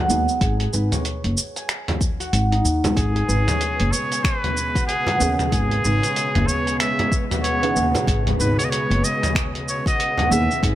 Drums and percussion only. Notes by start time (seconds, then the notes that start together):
0.10 shaker
0.28 shaker
0.41 kick, closed hi-hat, shaker
0.60 closed hi-hat
0.73 shaker
0.92 closed hi-hat, mid tom, shaker
1.05 closed hi-hat, shaker
1.24 closed hi-hat
1.37 shaker
1.56 closed hi-hat, shaker
1.69 finger snap, closed hi-hat, shaker
1.88 closed hi-hat, mid tom, frame drum
2.01 kick, shaker
2.20 closed hi-hat, shaker
2.33 closed hi-hat, shaker
2.52 closed hi-hat
2.65 shaker
2.84 closed hi-hat, mid tom, frame drum, shaker
2.97 kick, closed hi-hat, shaker
3.16 closed hi-hat
3.29 shaker
3.48 closed hi-hat, mid tom, shaker
3.61 closed hi-hat, shaker
3.80 closed hi-hat
3.93 shaker
4.12 closed hi-hat, shaker
4.24 finger snap, kick, closed hi-hat, shaker
4.44 closed hi-hat, mid tom
4.57 shaker
4.75 kick, closed hi-hat, shaker
4.89 closed hi-hat, shaker
5.07 closed hi-hat, frame drum
5.20 shaker
5.39 mid tom, shaker
5.52 kick, closed hi-hat, shaker
5.71 closed hi-hat
5.84 shaker
6.03 closed hi-hat, shaker
6.16 closed hi-hat, shaker
6.35 closed hi-hat, mid tom
6.48 shaker
6.67 closed hi-hat, shaker
6.80 finger snap, closed hi-hat, shaker
6.99 closed hi-hat, frame drum
7.12 kick, shaker
7.31 closed hi-hat, mid tom, shaker
7.44 closed hi-hat, shaker
7.63 closed hi-hat
7.76 shaker
7.95 closed hi-hat, frame drum, shaker
8.07 kick, closed hi-hat, shaker
8.27 closed hi-hat, mid tom
8.40 shaker
8.59 closed hi-hat, shaker
8.72 closed hi-hat, shaker
8.91 closed hi-hat
9.04 shaker
9.23 closed hi-hat, mid tom, shaker
9.35 finger snap, kick, closed hi-hat, shaker
9.55 closed hi-hat
9.68 shaker
9.86 kick, closed hi-hat, shaker
10.00 closed hi-hat, shaker
10.17 closed hi-hat, mid tom, frame drum
10.32 shaker
10.51 shaker
10.63 kick, closed hi-hat, shaker